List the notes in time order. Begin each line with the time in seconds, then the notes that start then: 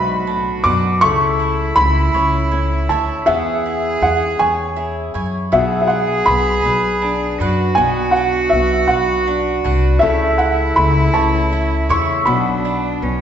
Already playing: B1 G#2 B2 B3 D4 F#4 B4 F#5 B5
0.27 A2 D4
0.64 F#2 B2 D4 B4 F#5 D6
1.01 C#2 C#3 A3 E4 A4 C#6
1.40 E4
1.76 C#2 A3 B5
2.14 C#2 C#5, muted steel-string acoustic guitar stroke
2.52 C#4 E4
2.89 D2 E4 C#5 E5 A5
3.26 E2 E3 B3 G#4 E5
3.66 E4
4.02 E2 C#4 F#5
4.39 E2 C#5 G#5, muted steel-string acoustic guitar stroke
4.76 E4 G#4
5.14 F#2 E4 C#5 G#5
5.52 B1 B2 B3 F#4 G#4 E5
5.81 E5
5.87 D4 F#5
6.26 B1 B5
6.30 B3
6.65 B1 B4, muted steel-string acoustic guitar stroke
7.02 D4
7.39 F#2 D4 F#4 B4 F#5
7.75 B1 B2 B3 F#4 G#5
8.11 F#5
8.16 D4
8.50 B1 E5
8.55 B3
8.88 B1 B4 F#5, muted steel-string acoustic guitar stroke
9.27 D4
9.64 C2 D4 B4 F#5
9.99 C#2 C#3 A3 E4 A4 E5
10.38 E4 F#5
10.76 C#2 A3 B5
11.14 C#2 E3 C#5 A5
11.53 E4
11.89 E2 C#3 E4 C#5 E5 C#6
12.25 B1 B2 B3 D4 F#4 B5
12.65 D4
13.02 B1 B3 C#4